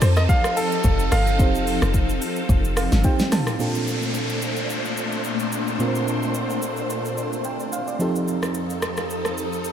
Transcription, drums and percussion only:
0.02 cross-stick loud
0.02 open hi-hat medium
0.02 shaker loud
0.16 cross-stick loud
0.16 shaker medium
0.29 kick loud
0.29 shaker medium
0.44 cross-stick loud
0.44 shaker medium
0.57 open hi-hat medium
0.57 shaker medium
0.72 shaker medium
0.84 kick loud
0.84 shaker medium
0.99 shaker medium
1.12 cross-stick medium
1.12 open hi-hat medium
1.12 shaker loud
1.27 shaker medium
1.39 kick loud
1.39 shaker medium
1.55 shaker medium
1.67 open hi-hat medium
1.67 shaker medium
1.82 cross-stick loud
1.82 shaker medium
1.94 kick loud
1.94 shaker medium
2.09 shaker medium
2.22 open hi-hat medium
2.22 shaker loud
2.36 shaker medium
2.49 kick loud
2.49 shaker medium
2.65 shaker medium
2.77 cross-stick loud
2.77 open hi-hat medium
2.77 shaker medium
2.92 snare medium
2.92 shaker medium
3.04 kick loud
3.04 shaker medium
3.19 snare medium
3.19 shaker medium
3.32 cross-stick medium
3.32 snare medium
3.32 mid tom loud
3.32 open hi-hat medium
3.32 shaker loud
3.47 cross-stick loud
3.47 shaker medium
3.60 shaker medium
3.75 shaker medium
3.87 shaker medium
4.02 shaker medium
4.14 shaker medium
4.30 shaker medium
4.42 shaker medium
4.56 shaker medium
4.70 shaker medium
4.85 shaker medium
4.97 shaker medium
5.12 shaker soft
5.24 shaker medium
5.39 shaker medium
5.52 shaker medium
5.67 shaker soft
5.80 shaker medium
5.95 shaker medium
6.08 shaker medium
6.22 shaker medium
6.34 shaker medium
6.50 shaker medium
6.62 shaker medium
6.77 shaker medium
6.90 shaker medium
7.05 shaker medium
7.17 shaker medium
7.33 shaker soft
7.44 shaker medium
7.60 shaker medium
7.72 shaker medium
7.88 shaker soft
8.00 shaker medium
8.15 shaker medium
8.28 shaker medium
8.43 cross-stick medium
8.43 shaker medium
8.54 shaker medium
8.70 shaker medium
8.82 cross-stick loud
8.82 shaker medium
8.97 cross-stick medium
8.97 shaker medium
9.10 shaker medium
9.25 cross-stick medium
9.25 shaker medium
9.38 shaker medium
9.53 shaker medium
9.64 shaker medium

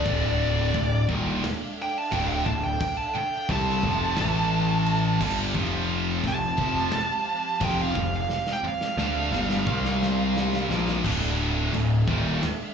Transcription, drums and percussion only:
0.06 kick loud
0.06 crash medium
0.74 kick medium
0.74 crash medium
1.09 kick loud
1.44 snare loud
1.44 crash medium
2.12 kick loud
2.12 crash medium
2.46 kick medium
2.81 kick loud
2.81 crash medium
3.49 kick loud
3.49 crash medium
3.83 kick loud
4.17 snare loud
4.17 crash medium
4.86 crash medium
5.21 kick loud
5.21 crash medium
5.55 kick loud
5.55 crash medium
6.24 kick medium
6.24 crash soft
6.58 kick medium
6.92 snare loud
6.92 crash medium
7.61 kick loud
7.61 crash medium
7.95 kick medium
8.29 snare medium
8.47 snare medium
8.81 snare medium
8.98 snare medium
9.33 snare medium
9.50 snare medium
9.67 kick loud
9.85 snare medium
10.03 snare medium
10.37 snare loud
10.53 snare medium
10.71 snare loud
10.88 snare medium
11.04 kick loud
11.04 crash loud
11.04 crash medium
11.74 crash medium
12.08 kick loud
12.43 snare loud
12.43 crash medium

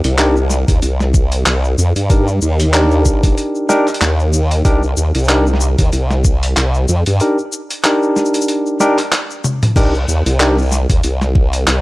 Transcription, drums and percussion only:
0.04 closed hi-hat medium
0.04 shaker soft
0.18 clap loud
0.18 closed hi-hat medium
0.18 shaker soft
0.37 shaker soft
0.50 snare soft
0.50 shaker medium
0.68 kick loud
0.68 closed hi-hat medium
0.68 shaker soft
0.82 closed hi-hat soft
0.82 shaker soft
1.00 snare soft
1.00 shaker soft
1.14 kick loud
1.14 shaker medium
1.32 closed hi-hat medium
1.32 shaker soft
1.46 clap loud
1.46 closed hi-hat soft
1.46 shaker soft
1.64 shaker soft
1.78 shaker medium
1.96 closed hi-hat medium
1.96 shaker soft
2.10 kick loud
2.10 closed hi-hat soft
2.10 shaker soft
2.27 shaker soft
2.41 shaker medium
2.60 closed hi-hat medium
2.60 shaker soft
2.74 clap loud
2.74 closed hi-hat medium
2.74 shaker soft
2.91 shaker soft
3.05 kick medium
3.05 shaker medium
3.23 kick loud
3.23 closed hi-hat medium
3.23 shaker soft
3.38 closed hi-hat medium
3.38 shaker soft
3.55 shaker soft
3.69 snare soft
3.69 shaker medium
3.87 clap soft
3.87 shaker soft
3.94 closed hi-hat medium
4.01 clap loud
4.01 closed hi-hat medium
4.01 shaker soft
4.19 shaker soft
4.33 shaker medium
4.51 closed hi-hat medium
4.51 shaker soft
4.65 kick loud
4.65 closed hi-hat soft
4.65 shaker soft
4.83 shaker soft
4.97 shaker medium
5.15 closed hi-hat medium
5.15 shaker soft
5.18 shaker soft
5.24 shaker soft
5.29 clap loud
5.29 closed hi-hat medium
5.29 shaker soft
5.47 shaker soft
5.54 snare soft
5.60 shaker medium
5.79 kick loud
5.79 closed hi-hat medium
5.79 shaker soft
5.93 closed hi-hat medium
5.93 shaker soft
6.11 snare medium
6.11 shaker soft
6.24 kick loud
6.24 shaker medium
6.43 closed hi-hat medium
6.43 shaker soft
6.57 clap loud
6.57 closed hi-hat medium
6.57 shaker soft
6.74 shaker soft
6.88 shaker medium
7.06 closed hi-hat medium
7.06 shaker soft
7.20 closed hi-hat medium
7.20 shaker soft
7.38 shaker soft
7.52 shaker medium
7.70 closed hi-hat medium
7.70 shaker soft
7.84 clap loud
7.84 closed hi-hat medium
7.84 shaker soft
8.03 shaker soft
8.16 snare soft
8.16 shaker soft
8.25 shaker soft
8.34 closed hi-hat medium
8.34 shaker medium
8.41 shaker medium
8.48 closed hi-hat medium
8.48 shaker soft
8.66 shaker soft
8.80 snare soft
8.80 shaker medium
8.98 clap soft
8.98 closed hi-hat medium
8.98 shaker soft
9.12 clap loud
9.12 closed hi-hat medium
9.12 shaker soft
9.30 shaker soft
9.44 high tom medium
9.44 shaker medium
9.63 closed hi-hat medium
9.63 mid tom medium
9.63 shaker soft
9.76 kick loud
9.76 closed hi-hat medium
9.76 crash medium
9.76 shaker soft
9.94 shaker soft
10.09 shaker medium
10.26 closed hi-hat medium
10.26 shaker soft
10.40 clap loud
10.40 closed hi-hat medium
10.40 shaker soft
10.58 shaker soft
10.62 shaker soft
10.65 shaker soft
10.68 snare soft
10.68 shaker soft
10.72 shaker medium
10.90 kick loud
10.90 closed hi-hat medium
10.90 shaker soft
11.04 closed hi-hat medium
11.04 shaker soft
11.21 snare medium
11.21 shaker soft
11.35 kick loud
11.53 closed hi-hat medium
11.53 shaker soft
11.67 clap loud
11.67 closed hi-hat medium
11.67 shaker soft

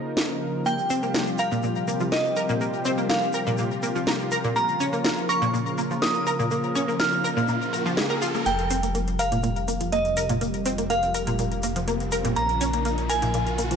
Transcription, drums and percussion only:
0.17 snare loud
0.66 shaker soft
0.79 shaker soft
0.90 shaker medium
1.03 shaker soft
1.14 snare loud
1.14 shaker soft
1.27 shaker soft
1.38 shaker medium
1.52 shaker soft
1.63 shaker soft
1.75 shaker soft
1.88 shaker medium
2.00 shaker soft
2.12 snare loud
2.12 shaker soft
2.25 shaker soft
2.36 shaker medium
2.49 shaker soft
2.61 shaker soft
2.74 shaker soft
2.85 shaker medium
2.98 shaker soft
3.10 snare loud
3.10 shaker soft
3.22 shaker soft
3.33 shaker medium
3.47 shaker soft
3.58 shaker soft
3.71 shaker soft
3.83 shaker medium
3.96 shaker soft
4.07 snare loud
4.07 shaker soft
4.20 shaker soft
4.32 shaker medium
4.44 shaker soft
4.56 shaker soft
4.68 shaker soft
4.80 shaker medium
4.93 shaker soft
5.04 snare loud
5.04 shaker soft
5.17 shaker soft
5.30 shaker medium
5.42 shaker soft
5.54 shaker soft
5.66 shaker soft
5.78 shaker medium
5.91 shaker soft
6.02 snare loud
6.02 shaker soft
6.14 shaker soft
6.27 shaker medium
6.40 shaker soft
6.51 shaker medium
6.63 shaker soft
6.76 shaker medium
6.89 shaker soft
6.99 snare loud
6.99 shaker soft
7.12 shaker soft
7.25 shaker medium
7.37 shaker soft
7.48 shaker soft
7.62 shaker soft
7.74 shaker medium
7.86 shaker soft
7.97 snare loud
7.97 shaker soft
8.10 shaker soft
8.22 shaker medium
8.34 shaker soft
8.46 closed hi-hat medium
8.46 shaker soft
8.59 closed hi-hat soft
8.59 shaker soft
8.70 open hi-hat loud
8.70 shaker medium
8.83 closed hi-hat medium
8.83 shaker soft
8.95 closed hi-hat soft
8.95 shaker soft
9.07 closed hi-hat soft
9.07 shaker soft
9.19 open hi-hat loud
9.19 shaker medium
9.32 closed hi-hat soft
9.32 shaker soft
9.43 closed hi-hat medium
9.43 shaker soft
9.56 closed hi-hat soft
9.56 shaker soft
9.68 open hi-hat medium
9.68 shaker medium
9.80 closed hi-hat medium
9.80 shaker soft
9.92 closed hi-hat medium
9.92 shaker soft
10.05 closed hi-hat soft
10.05 shaker soft
10.17 open hi-hat loud
10.17 shaker medium
10.29 closed hi-hat medium
10.29 shaker soft
10.41 closed hi-hat medium
10.41 shaker medium
10.54 closed hi-hat soft
10.54 shaker soft
10.66 open hi-hat loud
10.66 shaker medium
10.78 closed hi-hat medium
10.78 shaker soft
10.90 closed hi-hat soft
10.90 shaker medium
11.03 closed hi-hat soft
11.03 shaker soft
11.14 open hi-hat loud
11.14 shaker loud
11.27 closed hi-hat soft
11.27 shaker soft
11.39 closed hi-hat medium
11.39 shaker medium
11.52 closed hi-hat soft
11.52 shaker soft
11.63 open hi-hat loud
11.63 shaker medium
11.76 closed hi-hat medium
11.76 shaker soft
11.88 closed hi-hat medium
11.88 shaker medium
12.00 closed hi-hat soft
12.00 shaker soft
12.12 open hi-hat loud
12.12 shaker medium
12.25 closed hi-hat soft
12.25 shaker soft
12.36 closed hi-hat soft
12.36 shaker medium
12.49 closed hi-hat soft
12.49 shaker soft
12.61 open hi-hat loud
12.61 shaker medium
12.73 closed hi-hat medium
12.73 shaker soft
12.85 closed hi-hat soft
12.85 shaker medium
12.98 closed hi-hat soft
12.98 shaker soft
13.10 open hi-hat loud
13.10 shaker loud
13.22 closed hi-hat soft
13.22 shaker soft
13.34 closed hi-hat soft
13.34 shaker soft
13.47 closed hi-hat soft
13.47 shaker soft
13.58 open hi-hat loud
13.58 shaker medium
13.71 closed hi-hat soft
13.71 shaker soft

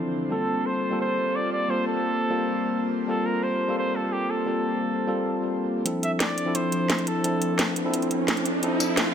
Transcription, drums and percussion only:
5.86 closed hi-hat medium
6.03 closed hi-hat medium
6.20 snare loud
6.20 closed hi-hat medium
6.38 closed hi-hat medium
6.55 closed hi-hat medium
6.72 closed hi-hat medium
6.90 snare loud
6.90 closed hi-hat medium
6.99 closed hi-hat soft
7.07 closed hi-hat medium
7.24 closed hi-hat medium
7.42 closed hi-hat medium
7.59 snare loud
7.59 closed hi-hat medium
7.76 closed hi-hat medium
7.94 closed hi-hat medium
8.02 closed hi-hat soft
8.11 closed hi-hat medium
8.28 snare loud
8.28 closed hi-hat medium
8.37 closed hi-hat soft
8.46 closed hi-hat medium
8.63 closed hi-hat medium
8.80 cross-stick soft
8.80 closed hi-hat medium
8.80 tambourine medium
8.97 snare loud
8.97 closed hi-hat medium

